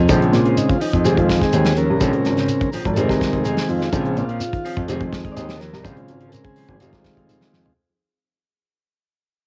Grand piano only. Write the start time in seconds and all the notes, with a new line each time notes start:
0.09 A#1
0.33 A#2
0.94 F2
1.05 F1
1.17 F2
1.53 D#2
1.90 C2
2.01 A#1
2.14 A#1
2.25 G#1
2.73 A#1
2.85 G#1
2.97 F1
3.09 C2
3.33 F1
3.69 F2
3.93 A#1
4.17 A#2
4.77 F2
4.89 F1
5.00 F2
5.37 D#2
5.73 C2
5.85 A#1
5.97 A#1
6.09 G#1
6.57 A#1
6.68 G#1
6.81 F1
6.93 C2
7.17 F1
7.53 F2